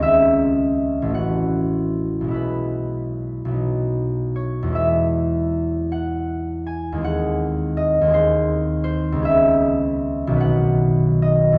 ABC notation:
X:1
M:6/8
L:1/8
Q:3/8=52
K:E
V:1 name="Harp"
[eg]3 f3 | B4- B c | e3 f2 g | f2 d ^B2 B |
e3 f2 d |]
V:2 name="Harp"
[C,,G,CG]3 [A,,,A,CF]3 | [B,,,G,B,E]3 [B,,,F,B,D]3 | [E,,G,B,E]6 | [D,,G,^B,G]3 [D,,G,B,G]3 |
[C,,G,B,G]3 [B,,,D,B,B]3 |]